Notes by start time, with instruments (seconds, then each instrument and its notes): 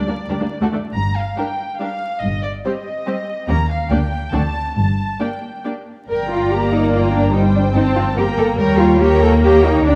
Already playing: violin section D5
0.07 cello section D2, viola section G3 D4, violin section A#3 D4
0.29 cello section D2, viola section G3 D4, violin section G4 A#4
0.40 cello section D2, viola section G3 D4, violin section A#3 D4
0.61 cello section D2, viola section A3 D4, violin section F#4 A4
0.73 cello section D2, viola section A3 D4, violin section A3 D4
0.94 double bass section G1, cello section G2, violin section A#5
1.17 violin section F5
1.37 viola section G3 D4, violin section G4 A#4 G5
1.79 viola section G3 D4, violin section G4 A#4 F5
2.22 double bass section G1, cello section G2, violin section D#5
2.44 violin section D5
2.65 viola section G3 C4, violin section G4 C5 D#5
3.07 viola section G3 C4, violin section G4 C5
3.49 double bass section D#2, cello section D#2, viola section A#3 C#4, violin section G4 A#4 A#5
3.71 violin section F5
3.90 double bass section D2, cello section D2, viola section A#3 D4, violin section G4 D5 G5
4.32 double bass section D2, cello section D2, viola section C4 D4, violin section F#4 D5 A5
4.76 double bass section G1, cello section G2, violin section A5
5.20 viola section A#3 D4, violin section G4 D5 G5
5.65 viola section A#3 D4, violin section G4 D5
6.09 double bass section G1, cello section A#4, violin section D5 G5 A#5
6.30 cello section F4
6.52 viola section A#3, cello section G4, violin section A#5
6.72 cello section D#4
6.93 cello section F4, violin section G5 A#5
7.13 cello section D4
7.34 viola section G3, cello section D#4, violin section C5 G5
7.55 cello section D4
7.75 viola section C4, cello section D#4, violin section A5
7.95 cello section F4
8.17 viola section A#3, cello section G4, violin section A#4 G5 A#5
8.37 cello section A4
8.58 double bass section D#2, viola section G3, cello section A#4, violin section C#5 G5 A#5
8.79 cello section F4
9.00 viola section A#3, cello section G4, violin section C#5 G5 A#5
9.22 cello section A4
9.43 cello section G4, violin section C#5 G5 A#5
9.65 cello section D#4
9.86 double bass section D2, cello section D4, viola section D4, violin section D5 G5 A#5